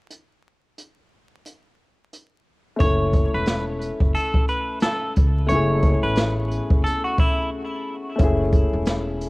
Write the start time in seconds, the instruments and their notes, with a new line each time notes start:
0.10 closed hi-hat
0.78 closed hi-hat
1.45 closed hi-hat
2.13 closed hi-hat
2.76 upright piano A3 C#4, closed hi-hat
2.80 upright bass F#1, upright piano E4 A4, clean electric guitar C#5, kick
3.13 kick, closed hi-hat
3.34 upright bass E1, clean electric guitar B4
3.46 snare, closed hi-hat
3.81 closed hi-hat
4.01 upright bass F#1, kick
4.15 clean electric guitar A4, closed hi-hat
4.34 kick
4.48 clean electric guitar B4, closed hi-hat
4.80 clean electric guitar A4, snare, closed hi-hat
5.16 upright bass C#2, kick, closed hi-hat
5.47 upright bass F#1, upright piano A3 C#4, clean electric guitar C#5, closed hi-hat
5.52 upright piano E4 G#4
5.82 kick, closed hi-hat
6.03 upright bass A1, clean electric guitar B4
6.15 snare, closed hi-hat
6.51 closed hi-hat
6.70 upright bass F#1, kick
6.84 clean electric guitar A4, closed hi-hat
7.04 clean electric guitar F#4
7.18 clean electric guitar E4, kick, closed hi-hat
8.16 upright bass F#1, upright piano A3 C#4, kick, closed hi-hat
8.21 upright piano E4 G#4
8.52 kick, closed hi-hat
8.73 upright bass E1
8.85 snare, closed hi-hat
9.21 closed hi-hat